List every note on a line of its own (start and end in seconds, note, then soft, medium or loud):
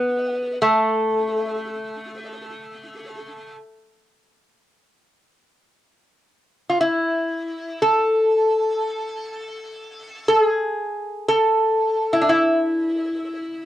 0.00 0.57 B3 medium
0.62 3.56 A3 medium
6.70 6.78 F4 soft
6.81 7.83 E4 medium
7.82 10.28 A4 medium
10.28 10.41 A4 medium
10.41 11.28 G#4 medium
11.28 12.16 A4 medium
12.13 12.21 E4 medium
12.21 12.30 D4 soft
12.29 13.65 E4 medium